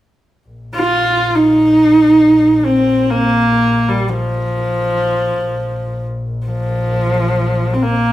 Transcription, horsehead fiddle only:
0.75 1.36 F4 medium
1.35 2.66 D#4 medium
2.65 3.12 C4 medium
3.10 3.90 A#3 medium
3.89 4.10 G3 medium
4.09 6.06 F3 medium
6.46 7.75 F3 medium
7.73 7.84 C4 soft
7.83 8.12 A#3 medium

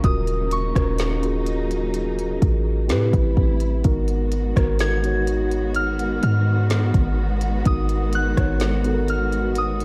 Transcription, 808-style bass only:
0.04 0.72 D#1 loud
0.76 2.38 D#1 loud
2.42 2.92 A1 loud
2.90 3.12 A2 loud
3.14 3.36 A1 loud
3.37 3.83 A1 loud
3.85 4.53 G#1 loud
4.57 6.19 G#1 loud
6.23 6.92 G#2 loud
6.94 7.63 G#1 loud
7.66 8.34 G#1 loud
8.37 9.85 G#1 loud

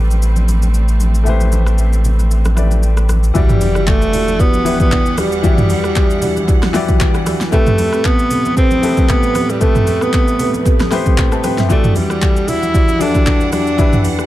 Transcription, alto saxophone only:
3.36 3.89 G3 loud
3.88 4.41 A3 loud
4.40 4.80 B3 loud
4.80 5.20 B3 loud
5.18 7.27 G3 loud
7.53 8.07 A3 loud
8.05 8.57 B3 loud
8.57 9.11 C4 loud
9.10 9.52 B3 loud
9.50 9.63 G3 medium
9.62 10.04 A3 loud
10.02 10.80 B3 loud
11.70 11.98 A3 loud
11.97 12.50 G3 loud
12.49 13.02 E4 loud
13.01 13.52 D4 loud
13.53 14.26 D4 loud

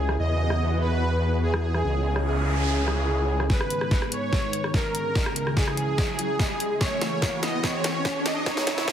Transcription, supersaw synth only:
0.00 0.11 G#4 loud
0.19 0.73 D#5 loud
0.81 1.35 B4 loud
1.43 2.18 G#4 medium
2.26 3.42 G#4 loud
3.50 4.04 B4 medium
4.12 4.66 C#5 loud
4.74 5.49 A#4 loud
5.57 6.73 G#4 loud
6.81 7.35 C#5 medium
7.43 7.62 D#5 medium
7.64 8.18 C#5 medium
8.26 8.45 D#5 medium
8.46 8.86 C#5 loud
8.88 8.92 C#5 loud

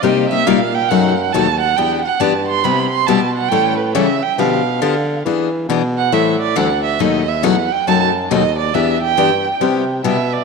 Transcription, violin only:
0.02 0.29 D#5 medium
0.29 0.48 E5 loud
0.47 0.76 F5 medium
0.74 0.91 G5 loud
0.89 1.34 F#5 medium
1.33 1.60 A5 loud
1.60 1.78 F#5 loud
1.77 2.04 G5 medium
2.05 2.22 F#5 medium
2.20 2.47 A5 medium
2.48 2.65 C6 loud
2.64 2.91 B5 medium
2.91 3.08 C6 medium
3.07 3.35 A5 medium
3.36 3.51 F#5 medium
3.49 3.77 G5 loud
3.78 3.95 B4 soft
3.94 4.24 E5 medium
4.22 4.41 G5 medium
4.39 5.18 F5 medium
5.98 6.15 F#5 medium
6.13 6.40 E5 medium
6.40 6.58 D5 medium
6.56 6.83 F#5 medium
6.84 7.02 E5 medium
7.00 7.30 D#5 medium
7.28 7.45 E5 medium
7.44 7.74 F#5 medium
7.72 7.87 G5 medium
7.87 8.04 A5 medium
8.30 8.57 D#5 medium
8.58 8.75 D5 medium
8.74 9.01 E5 medium
9.02 9.57 G5 loud
10.04 10.34 E5 medium
10.33 10.44 D5 medium

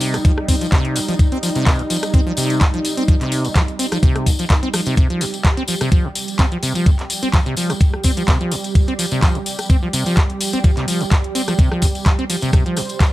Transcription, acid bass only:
0.00 0.16 C3 loud
0.14 0.18 A#2 loud
0.25 0.32 F3 medium
0.48 0.55 C4 loud
0.61 0.67 F3 medium
0.72 0.97 C3 loud
0.96 1.00 A#2 loud
1.08 1.14 F3 medium
1.32 1.38 C4 loud
1.43 1.50 F3 medium
1.56 1.81 C3 loud
1.79 1.83 A#2 loud
1.90 1.97 F3 medium
2.14 2.21 C4 loud
2.27 2.33 F3 medium
2.37 2.63 C3 loud
2.61 2.65 A#2 loud
2.74 2.80 F3 medium
2.97 3.03 C4 loud
3.08 3.15 F3 medium
3.21 3.46 C3 loud
3.45 3.48 A#2 loud
3.56 3.63 F3 medium
3.79 3.86 C4 loud
3.92 3.98 F3 medium
4.03 4.28 C3 loud
4.26 4.31 A#2 loud
4.39 4.45 F3 medium
4.63 4.69 C4 loud
4.74 4.81 F3 medium
4.86 4.95 C3 loud
4.97 5.08 C3 loud
5.10 5.22 F3 medium
5.21 5.25 A#2 loud
5.57 5.63 C4 loud
5.68 5.75 F3 medium
5.81 5.90 C3 loud
5.92 6.06 F3 medium
6.05 6.08 A#2 loud
6.39 6.46 C4 loud
6.52 6.58 F3 medium
6.63 6.73 C3 loud
6.75 6.88 F3 medium
6.86 6.91 A#2 loud
7.23 7.29 C4 loud
7.34 7.41 F3 medium
7.46 7.55 C3 loud
7.57 7.71 F3 medium
7.70 7.73 A#2 loud
8.04 8.11 C4 loud
8.17 8.23 F3 medium
8.28 8.39 C3 loud
8.41 8.53 F3 medium
8.52 8.56 A#2 loud
8.88 8.94 C4 loud
8.99 9.06 F3 medium
9.12 9.21 C3 loud
9.23 9.37 F3 medium
9.35 9.39 A#2 loud
9.70 9.77 C4 loud
9.83 9.88 F3 medium
9.93 10.04 C3 loud
10.06 10.19 F3 medium
10.17 10.21 A#2 medium
10.53 10.59 C4 loud
10.64 10.71 F3 medium
10.77 10.86 C3 loud
10.88 11.02 F3 medium
11.01 11.04 A#2 loud
11.35 11.42 C4 loud
11.48 11.54 F3 medium
11.59 11.69 C3 loud
11.71 11.84 F3 medium
11.82 11.87 A#2 loud
12.19 12.25 C4 loud
12.30 12.37 F3 medium
12.42 12.51 C3 loud
12.53 12.64 C3 loud
12.66 12.78 F3 medium
12.77 12.81 A#2 loud

